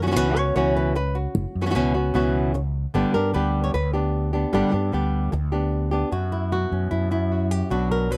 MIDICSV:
0, 0, Header, 1, 4, 480
1, 0, Start_track
1, 0, Tempo, 397351
1, 1638, Time_signature, 4, 2, 24, 8
1, 9871, End_track
2, 0, Start_track
2, 0, Title_t, "Nylon-string guitar"
2, 0, Program_c, 0, 24
2, 25, Note_on_c, 0, 52, 53
2, 32, Note_on_c, 0, 59, 47
2, 34, Note_on_c, 0, 61, 51
2, 41, Note_on_c, 0, 66, 50
2, 66, Note_off_c, 0, 52, 0
2, 75, Note_off_c, 0, 59, 0
2, 77, Note_off_c, 0, 61, 0
2, 81, Note_on_c, 0, 52, 59
2, 82, Note_off_c, 0, 66, 0
2, 89, Note_on_c, 0, 59, 60
2, 92, Note_on_c, 0, 61, 65
2, 96, Note_on_c, 0, 66, 62
2, 121, Note_off_c, 0, 52, 0
2, 128, Note_off_c, 0, 59, 0
2, 132, Note_off_c, 0, 61, 0
2, 135, Note_on_c, 0, 52, 63
2, 137, Note_off_c, 0, 66, 0
2, 142, Note_on_c, 0, 59, 65
2, 146, Note_on_c, 0, 61, 67
2, 152, Note_on_c, 0, 66, 77
2, 180, Note_off_c, 0, 52, 0
2, 187, Note_off_c, 0, 59, 0
2, 191, Note_off_c, 0, 66, 0
2, 191, Note_on_c, 0, 47, 69
2, 194, Note_on_c, 0, 52, 73
2, 199, Note_off_c, 0, 61, 0
2, 199, Note_on_c, 0, 71, 79
2, 201, Note_on_c, 0, 59, 80
2, 203, Note_on_c, 0, 61, 79
2, 205, Note_on_c, 0, 66, 83
2, 420, Note_off_c, 0, 66, 0
2, 425, Note_off_c, 0, 47, 0
2, 426, Note_off_c, 0, 52, 0
2, 431, Note_off_c, 0, 61, 0
2, 434, Note_on_c, 0, 66, 45
2, 437, Note_off_c, 0, 59, 0
2, 437, Note_on_c, 0, 73, 88
2, 446, Note_off_c, 0, 71, 0
2, 448, Note_on_c, 0, 61, 45
2, 457, Note_on_c, 0, 59, 37
2, 658, Note_off_c, 0, 73, 0
2, 667, Note_off_c, 0, 66, 0
2, 669, Note_off_c, 0, 59, 0
2, 670, Note_on_c, 0, 47, 73
2, 673, Note_off_c, 0, 61, 0
2, 673, Note_on_c, 0, 73, 82
2, 675, Note_on_c, 0, 52, 74
2, 683, Note_on_c, 0, 59, 72
2, 688, Note_on_c, 0, 61, 78
2, 693, Note_on_c, 0, 66, 73
2, 920, Note_off_c, 0, 73, 0
2, 925, Note_on_c, 0, 71, 79
2, 1138, Note_off_c, 0, 47, 0
2, 1141, Note_off_c, 0, 52, 0
2, 1145, Note_off_c, 0, 59, 0
2, 1148, Note_off_c, 0, 61, 0
2, 1148, Note_off_c, 0, 71, 0
2, 1152, Note_off_c, 0, 66, 0
2, 1162, Note_on_c, 0, 71, 78
2, 1390, Note_on_c, 0, 66, 61
2, 1408, Note_off_c, 0, 71, 0
2, 1947, Note_off_c, 0, 66, 0
2, 1949, Note_on_c, 0, 52, 48
2, 1954, Note_on_c, 0, 59, 55
2, 1957, Note_on_c, 0, 61, 54
2, 1962, Note_on_c, 0, 66, 55
2, 1988, Note_off_c, 0, 52, 0
2, 1995, Note_off_c, 0, 59, 0
2, 1998, Note_off_c, 0, 61, 0
2, 2002, Note_off_c, 0, 66, 0
2, 2003, Note_on_c, 0, 52, 57
2, 2009, Note_on_c, 0, 59, 58
2, 2012, Note_on_c, 0, 61, 61
2, 2016, Note_on_c, 0, 66, 67
2, 2042, Note_off_c, 0, 52, 0
2, 2051, Note_off_c, 0, 59, 0
2, 2053, Note_off_c, 0, 61, 0
2, 2056, Note_on_c, 0, 52, 69
2, 2057, Note_off_c, 0, 66, 0
2, 2065, Note_on_c, 0, 59, 65
2, 2067, Note_on_c, 0, 61, 70
2, 2072, Note_on_c, 0, 66, 80
2, 2098, Note_off_c, 0, 52, 0
2, 2103, Note_off_c, 0, 59, 0
2, 2110, Note_off_c, 0, 61, 0
2, 2112, Note_off_c, 0, 66, 0
2, 2112, Note_on_c, 0, 47, 76
2, 2113, Note_on_c, 0, 52, 85
2, 2117, Note_on_c, 0, 59, 76
2, 2125, Note_on_c, 0, 61, 83
2, 2126, Note_on_c, 0, 66, 85
2, 2335, Note_off_c, 0, 66, 0
2, 2346, Note_off_c, 0, 47, 0
2, 2346, Note_off_c, 0, 52, 0
2, 2348, Note_off_c, 0, 59, 0
2, 2349, Note_on_c, 0, 66, 51
2, 2352, Note_off_c, 0, 61, 0
2, 2365, Note_on_c, 0, 61, 43
2, 2374, Note_on_c, 0, 59, 41
2, 2583, Note_off_c, 0, 59, 0
2, 2584, Note_off_c, 0, 66, 0
2, 2584, Note_on_c, 0, 47, 74
2, 2589, Note_off_c, 0, 61, 0
2, 2594, Note_on_c, 0, 52, 80
2, 2598, Note_on_c, 0, 59, 83
2, 2604, Note_on_c, 0, 61, 71
2, 2609, Note_on_c, 0, 66, 84
2, 3057, Note_off_c, 0, 47, 0
2, 3065, Note_off_c, 0, 59, 0
2, 3066, Note_off_c, 0, 52, 0
2, 3068, Note_off_c, 0, 61, 0
2, 3071, Note_off_c, 0, 66, 0
2, 3551, Note_on_c, 0, 50, 76
2, 3559, Note_on_c, 0, 55, 76
2, 3563, Note_on_c, 0, 59, 79
2, 3564, Note_on_c, 0, 67, 79
2, 3570, Note_on_c, 0, 62, 74
2, 3785, Note_off_c, 0, 50, 0
2, 3786, Note_off_c, 0, 67, 0
2, 3789, Note_off_c, 0, 55, 0
2, 3791, Note_off_c, 0, 59, 0
2, 3794, Note_off_c, 0, 62, 0
2, 3795, Note_on_c, 0, 70, 80
2, 3800, Note_on_c, 0, 67, 47
2, 3813, Note_on_c, 0, 62, 41
2, 3823, Note_on_c, 0, 59, 42
2, 4025, Note_off_c, 0, 59, 0
2, 4029, Note_off_c, 0, 67, 0
2, 4030, Note_on_c, 0, 55, 54
2, 4034, Note_off_c, 0, 70, 0
2, 4036, Note_off_c, 0, 62, 0
2, 4038, Note_on_c, 0, 71, 81
2, 4040, Note_on_c, 0, 59, 58
2, 4051, Note_on_c, 0, 62, 55
2, 4054, Note_on_c, 0, 67, 62
2, 4373, Note_off_c, 0, 71, 0
2, 4394, Note_on_c, 0, 73, 82
2, 4504, Note_off_c, 0, 55, 0
2, 4509, Note_off_c, 0, 59, 0
2, 4514, Note_off_c, 0, 62, 0
2, 4514, Note_off_c, 0, 73, 0
2, 4516, Note_off_c, 0, 67, 0
2, 4519, Note_on_c, 0, 71, 82
2, 4749, Note_off_c, 0, 71, 0
2, 4753, Note_on_c, 0, 67, 43
2, 4764, Note_on_c, 0, 62, 46
2, 4773, Note_on_c, 0, 59, 36
2, 5217, Note_off_c, 0, 67, 0
2, 5227, Note_off_c, 0, 62, 0
2, 5231, Note_on_c, 0, 67, 49
2, 5236, Note_off_c, 0, 59, 0
2, 5242, Note_on_c, 0, 62, 48
2, 5257, Note_on_c, 0, 59, 39
2, 5465, Note_off_c, 0, 67, 0
2, 5469, Note_off_c, 0, 59, 0
2, 5469, Note_on_c, 0, 50, 69
2, 5470, Note_off_c, 0, 62, 0
2, 5473, Note_on_c, 0, 55, 80
2, 5483, Note_on_c, 0, 59, 76
2, 5491, Note_on_c, 0, 62, 81
2, 5492, Note_on_c, 0, 67, 78
2, 5687, Note_off_c, 0, 67, 0
2, 5702, Note_on_c, 0, 67, 50
2, 5703, Note_off_c, 0, 50, 0
2, 5704, Note_off_c, 0, 62, 0
2, 5705, Note_off_c, 0, 55, 0
2, 5711, Note_off_c, 0, 59, 0
2, 5719, Note_on_c, 0, 62, 43
2, 5730, Note_on_c, 0, 59, 39
2, 5940, Note_off_c, 0, 67, 0
2, 5944, Note_off_c, 0, 59, 0
2, 5947, Note_on_c, 0, 55, 49
2, 5948, Note_off_c, 0, 62, 0
2, 5958, Note_on_c, 0, 59, 53
2, 5966, Note_on_c, 0, 62, 57
2, 5970, Note_on_c, 0, 67, 59
2, 6422, Note_off_c, 0, 55, 0
2, 6422, Note_off_c, 0, 59, 0
2, 6430, Note_off_c, 0, 67, 0
2, 6432, Note_off_c, 0, 62, 0
2, 6668, Note_on_c, 0, 67, 40
2, 6678, Note_on_c, 0, 62, 41
2, 6694, Note_on_c, 0, 59, 36
2, 7129, Note_off_c, 0, 67, 0
2, 7144, Note_on_c, 0, 67, 47
2, 7147, Note_off_c, 0, 62, 0
2, 7156, Note_off_c, 0, 59, 0
2, 7160, Note_on_c, 0, 62, 40
2, 7168, Note_on_c, 0, 59, 39
2, 7381, Note_off_c, 0, 67, 0
2, 7388, Note_on_c, 0, 42, 52
2, 7389, Note_off_c, 0, 62, 0
2, 7393, Note_off_c, 0, 59, 0
2, 7397, Note_on_c, 0, 66, 71
2, 7636, Note_on_c, 0, 64, 68
2, 7863, Note_off_c, 0, 66, 0
2, 7872, Note_off_c, 0, 42, 0
2, 7875, Note_on_c, 0, 47, 50
2, 7881, Note_on_c, 0, 66, 66
2, 8122, Note_on_c, 0, 61, 38
2, 8332, Note_off_c, 0, 64, 0
2, 8346, Note_on_c, 0, 64, 74
2, 8582, Note_off_c, 0, 64, 0
2, 8587, Note_on_c, 0, 42, 47
2, 8596, Note_off_c, 0, 47, 0
2, 8596, Note_on_c, 0, 64, 68
2, 8824, Note_off_c, 0, 66, 0
2, 8839, Note_on_c, 0, 66, 70
2, 9074, Note_off_c, 0, 64, 0
2, 9074, Note_on_c, 0, 67, 64
2, 9290, Note_off_c, 0, 61, 0
2, 9298, Note_off_c, 0, 66, 0
2, 9307, Note_on_c, 0, 47, 57
2, 9312, Note_off_c, 0, 42, 0
2, 9315, Note_off_c, 0, 67, 0
2, 9316, Note_on_c, 0, 66, 84
2, 9317, Note_on_c, 0, 54, 38
2, 9325, Note_on_c, 0, 59, 38
2, 9332, Note_on_c, 0, 62, 38
2, 9554, Note_off_c, 0, 66, 0
2, 9561, Note_on_c, 0, 70, 76
2, 9778, Note_off_c, 0, 54, 0
2, 9792, Note_on_c, 0, 54, 51
2, 9806, Note_off_c, 0, 70, 0
2, 9806, Note_on_c, 0, 71, 78
2, 9871, Note_off_c, 0, 47, 0
2, 9871, Note_off_c, 0, 54, 0
2, 9871, Note_off_c, 0, 59, 0
2, 9871, Note_off_c, 0, 62, 0
2, 9871, Note_off_c, 0, 71, 0
2, 9871, End_track
3, 0, Start_track
3, 0, Title_t, "Fretless electric bass"
3, 0, Program_c, 1, 35
3, 0, Note_on_c, 1, 42, 66
3, 168, Note_off_c, 1, 42, 0
3, 195, Note_on_c, 1, 37, 72
3, 619, Note_off_c, 1, 37, 0
3, 675, Note_on_c, 1, 37, 75
3, 1521, Note_off_c, 1, 37, 0
3, 1633, Note_on_c, 1, 30, 80
3, 1741, Note_off_c, 1, 30, 0
3, 1878, Note_on_c, 1, 42, 67
3, 2089, Note_off_c, 1, 42, 0
3, 2118, Note_on_c, 1, 37, 73
3, 2540, Note_off_c, 1, 37, 0
3, 2596, Note_on_c, 1, 37, 79
3, 3441, Note_off_c, 1, 37, 0
3, 3559, Note_on_c, 1, 31, 82
3, 3664, Note_off_c, 1, 31, 0
3, 3805, Note_on_c, 1, 43, 67
3, 4013, Note_off_c, 1, 43, 0
3, 4045, Note_on_c, 1, 38, 75
3, 4464, Note_off_c, 1, 38, 0
3, 4520, Note_on_c, 1, 38, 83
3, 5363, Note_off_c, 1, 38, 0
3, 5474, Note_on_c, 1, 31, 75
3, 5581, Note_off_c, 1, 31, 0
3, 5713, Note_on_c, 1, 43, 67
3, 5926, Note_off_c, 1, 43, 0
3, 5956, Note_on_c, 1, 38, 75
3, 6378, Note_off_c, 1, 38, 0
3, 6434, Note_on_c, 1, 38, 78
3, 7280, Note_off_c, 1, 38, 0
3, 7392, Note_on_c, 1, 42, 71
3, 8027, Note_off_c, 1, 42, 0
3, 8113, Note_on_c, 1, 42, 76
3, 8326, Note_off_c, 1, 42, 0
3, 8354, Note_on_c, 1, 42, 67
3, 9200, Note_off_c, 1, 42, 0
3, 9312, Note_on_c, 1, 35, 73
3, 9871, Note_off_c, 1, 35, 0
3, 9871, End_track
4, 0, Start_track
4, 0, Title_t, "Muted nylon-string guitar strokes"
4, 1153, Note_on_c, 9, 29, 61
4, 1274, Note_off_c, 9, 29, 0
4, 1630, Note_on_c, 9, 29, 68
4, 1751, Note_off_c, 9, 29, 0
4, 3071, Note_on_c, 9, 29, 61
4, 3192, Note_off_c, 9, 29, 0
4, 4520, Note_on_c, 9, 29, 68
4, 4641, Note_off_c, 9, 29, 0
4, 6429, Note_on_c, 9, 29, 60
4, 6550, Note_off_c, 9, 29, 0
4, 9871, End_track
0, 0, End_of_file